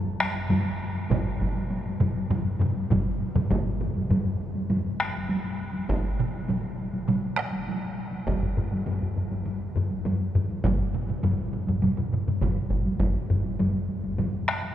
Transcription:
0.20 taiko rim, taiko high
0.35 taiko high
0.50 taiko low-mid, taiko high
0.95 taiko high
1.10 taiko, taiko low-mid, taiko mid, taiko high
1.41 taiko, taiko high
1.56 taiko high
1.71 taiko high
2.00 taiko low-mid, taiko mid, taiko high
2.16 taiko high
2.30 taiko low-mid, taiko mid, taiko high
2.60 taiko low-mid, taiko mid
2.76 taiko high
2.90 taiko, taiko low-mid, taiko mid, taiko high
3.20 taiko high
3.35 taiko low-mid, taiko mid, taiko high
3.50 taiko, taiko high
3.81 taiko low-mid
3.95 taiko high
4.10 taiko low-mid, taiko high
4.40 taiko high
4.55 taiko high
4.70 taiko low-mid, taiko high
5.00 taiko rim
5.15 taiko high
5.29 taiko high
5.74 taiko high
5.89 taiko, taiko high
6.19 taiko mid
6.34 taiko high
6.48 taiko mid, taiko high
6.78 taiko high
6.93 taiko high
7.08 taiko mid, taiko high
7.37 taiko rim
7.53 taiko high
7.68 taiko high
8.13 taiko high
8.27 taiko, taiko low-mid, taiko high
8.43 taiko low-mid
8.57 taiko low-mid
8.72 taiko high
8.86 taiko low-mid, taiko high
9.02 taiko low-mid
9.16 taiko low-mid, taiko high
9.31 taiko low-mid, taiko high
9.46 taiko high
9.76 taiko low-mid
9.90 taiko high
10.05 taiko low-mid, taiko high
10.35 taiko low-mid
10.49 taiko high
10.64 taiko, taiko low-mid, taiko mid, taiko high
10.94 taiko low-mid, taiko mid
11.08 taiko low-mid, taiko mid, taiko high
11.23 taiko low-mid, taiko mid, taiko high
11.54 taiko low-mid, taiko mid
11.67 taiko low-mid, taiko mid, taiko high
11.82 taiko low-mid, taiko mid, taiko high
11.98 taiko low-mid, taiko mid
12.13 taiko low-mid, taiko mid
12.28 taiko low-mid, taiko mid
12.41 taiko, taiko low-mid, taiko mid, taiko high
12.71 taiko
12.86 taiko high
13.00 taiko, taiko high
13.30 taiko low-mid
13.44 taiko high
13.59 taiko low-mid, taiko high
13.89 taiko high
14.04 taiko high
14.18 taiko low-mid, taiko high
14.49 taiko rim
14.63 taiko high

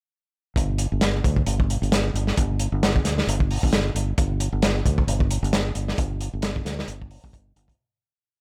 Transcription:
0.56 G1, kick, closed hi-hat
0.78 closed hi-hat
0.92 G1
1.01 snare, closed hi-hat
1.24 D2, kick, closed hi-hat
1.36 kick
1.46 G1, closed hi-hat
1.60 kick
1.70 closed hi-hat
1.82 G1, closed hi-hat
1.92 snare, closed hi-hat
2.14 G1, closed hi-hat
2.27 snare
2.37 G1, kick, closed hi-hat
2.60 closed hi-hat
2.72 G1
2.83 snare, closed hi-hat
2.96 kick
3.04 D2, snare, closed hi-hat
3.18 snare
3.27 G1, closed hi-hat
3.40 kick
3.51 open hi-hat
3.63 G1, kick
3.73 snare, closed hi-hat
3.95 G1, closed hi-hat
4.18 G1, kick, closed hi-hat
4.40 closed hi-hat
4.52 G1
4.62 snare, closed hi-hat
4.86 D2, kick, closed hi-hat
4.98 kick
5.07 G1, closed hi-hat
5.20 kick
5.31 closed hi-hat
5.43 G1, closed hi-hat
5.53 snare, closed hi-hat
5.75 G1, closed hi-hat
5.88 snare
5.98 G1, kick, closed hi-hat
6.21 closed hi-hat
6.33 G1
6.42 snare, closed hi-hat
6.56 kick
6.65 D2, snare, closed hi-hat
6.79 snare
6.88 G1, closed hi-hat
7.02 kick
7.11 open hi-hat
7.24 G1, kick
7.33 kick, closed hi-hat
7.56 G1, closed hi-hat
7.68 kick, closed hi-hat

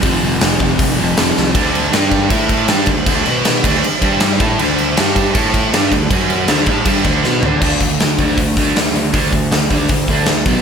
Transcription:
0.02 F1 F2 C3 F3, kick, open hi-hat
0.23 F1
0.41 F1, snare, open hi-hat
0.60 F1, kick
0.79 F1, kick, open hi-hat
0.97 F1 C3 F3
1.01 F2
1.16 F1 F2 C3 F3, snare, open hi-hat
1.37 C2, snare
1.54 D2 D3 A3 D4, kick, crash
1.75 crash
1.92 G2 G3 D4 G4, snare, crash
2.11 kick, crash
2.29 A2 A3 E4 A4, kick, crash
2.49 kick, crash
2.68 G2 G3 D4 G4, snare, crash
2.86 D2 D3 A3, kick, crash
3.06 D2 D3 A3 D4, kick, crash
3.26 B2 B3 F#4 B4, crash
3.45 snare, crash
3.63 D2 D3 A3 D4, kick, crash
3.83 muted distorted electric guitar stroke, muted picked electric bass stroke, crash
4.02 G2 G3 D4 G4, kick, crash
4.20 snare, crash
4.40 A2 A3 E4 A4, kick, crash
4.59 D2 D3 A3 D4, crash
4.78 crash
4.97 G2 G3 D4 G4, snare, crash
5.16 kick, crash
5.34 A2 A3 E4 A4, kick, crash
5.54 kick, crash
5.72 G2 G3 D4 G4, snare, crash
5.92 D2 D3 A3, kick, crash
6.10 F#2 F#3 C#4 F#4, kick, crash
6.30 crash
6.48 D2 D3 A3 D4, snare, crash
6.66 A2 A3 E4 A4, kick, crash
6.85 G2 G3 D4 G4, kick, crash
7.04 D2 D3 A3 D4, kick, crash
7.24 B2 B3 F#4 B4, snare
7.43 D2 D3 A3 D4, floor tom
7.62 D2 D3 A3 D4, kick, crash
7.80 D2 D3 A3, kick, open hi-hat
8.00 D2 D3 A3, snare, open hi-hat
8.19 D2 D3 A3 D4, kick, open hi-hat
8.38 D2 D3 A3, kick, open hi-hat
8.57 D2 D3 A3 D4, kick, open hi-hat
8.76 D2 D3 A3, snare, open hi-hat
8.94 D3 A3, open hi-hat
9.13 D2 D3 A3 D4, kick, open hi-hat
9.32 D2 D3 A3, kick, open hi-hat
9.51 D2 D3 A3, snare, open hi-hat
9.70 D2 D3 A3 D4, kick, open hi-hat
9.89 D2 D3 A3, kick, open hi-hat
10.08 D2 D3 A3 D4, kick, open hi-hat
10.26 D2 D3 A3, snare, open hi-hat
10.45 B1 B2 F#3 B3, kick, open hi-hat

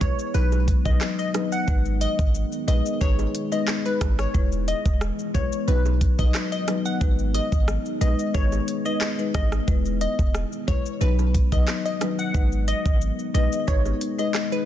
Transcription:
Already playing: E3 G#3 B3
0.01 B1 G#3 E4 B4 C#5, kick, closed hi-hat, high bongo, low bongo, shaker
0.19 shaker
0.34 B1 D#3 F#3 D#4 B4, high bongo, shaker
0.52 high bongo, shaker
0.68 kick, closed hi-hat, shaker
0.85 A#1 F#3 D#4 B4 D#5, kick, high bongo, shaker
1.01 cross-stick, clap, shaker
1.19 D#5, shaker
1.34 F#3 D#4 B4, cross-stick, closed hi-hat, high bongo, low bongo, shaker
1.52 F#5, shaker
1.68 G#1 G#3 D#4 B4, kick, shaker
1.85 shaker
2.01 D#5, closed hi-hat, shaker
2.19 G#1, kick, shaker
2.35 shaker
2.52 shaker
2.68 A#1 G#3 D#4 B4 D#5, closed hi-hat, high bongo, low bongo, shaker
2.86 shaker
3.01 G#1 G#3 D#4 B4 C#5, kick, high bongo, shaker
3.19 high bongo, shaker
3.35 closed hi-hat, shaker
3.52 G#3 D#4 B4 D#5, high bongo, shaker
3.68 cross-stick, clap, shaker
3.85 G#3 D#4 B4, shaker
4.01 G#1, kick, cross-stick, closed hi-hat, high bongo, low bongo, shaker
4.19 C#5, cross-stick, shaker
4.34 E1 E3 G#3 B3 E4 B4, kick, shaker
4.52 shaker
4.68 D#5, closed hi-hat, shaker
4.86 E1, kick, shaker
5.01 cross-stick, shaker
5.19 shaker
5.34 B1 G#3 E4 B4 C#5, kick, closed hi-hat, high bongo, low bongo, shaker
5.52 shaker
5.68 B1 D#3 F#3 D#4 B4, high bongo, shaker
5.85 high bongo, shaker
6.01 kick, closed hi-hat, shaker
6.19 A#1 F#3 D#4 B4 D#5, kick, high bongo, shaker
6.34 cross-stick, clap, shaker
6.52 D#5, shaker
6.68 F#3 D#4 B4, cross-stick, closed hi-hat, high bongo, low bongo, shaker
6.86 F#5, shaker
7.01 G#1 D#3 G#3 D#4 B4, kick, shaker
7.19 shaker
7.34 D#5, closed hi-hat, high bongo, shaker
7.52 G#1, kick, shaker
7.68 cross-stick, shaker
7.86 shaker
8.01 A#1 G#3 D#4 B4 D#5, closed hi-hat, high bongo, low bongo, shaker
8.19 shaker
8.34 G#1 G#3 D#4 B4 C#5, kick, high bongo, shaker
8.52 high bongo, shaker
8.68 closed hi-hat, shaker
8.85 G#3 D#4 B4 D#5, shaker
9.01 cross-stick, clap, shaker
9.19 G#3 D#4 B4, shaker
9.34 G#1 D#5, kick, cross-stick, closed hi-hat, high bongo, low bongo, shaker
9.52 cross-stick, shaker
9.68 E1 E3 G#3 E4 B4, kick, shaker
9.85 shaker
10.01 D#5, closed hi-hat, shaker
10.19 E1, kick, shaker
10.35 cross-stick, shaker
10.52 shaker
10.67 B1 G#3 E4 B4 C#5, kick, closed hi-hat, high bongo, low bongo, shaker
10.86 shaker
11.01 B1 D#3 F#3 D#4 B4, high bongo, shaker
11.19 high bongo, shaker
11.34 kick, closed hi-hat, shaker
11.52 A#1 F#3 D#4 B4 D#5, kick, high bongo, shaker
11.68 cross-stick, clap, shaker
11.85 D#5, shaker
12.01 F#3 D#4 B4, cross-stick, closed hi-hat, high bongo, low bongo, shaker
12.19 F#5, shaker
12.34 G#1 G#3 B3 D#4 B4, kick, shaker
12.52 shaker
12.68 D#5, closed hi-hat, shaker
12.86 G#1, kick, shaker
13.01 shaker
13.19 shaker
13.34 A#1 G#3 D#4 B4 D#5, closed hi-hat, high bongo, low bongo, shaker
13.52 shaker
13.68 G#1 G#3 D#4 B4 C#5, kick, high bongo, shaker
13.85 high bongo, shaker
14.01 closed hi-hat, shaker
14.19 G#3 D#4 B4 D#5, high bongo, shaker
14.34 cross-stick, clap, shaker
14.52 G#3 D#4 B4, shaker

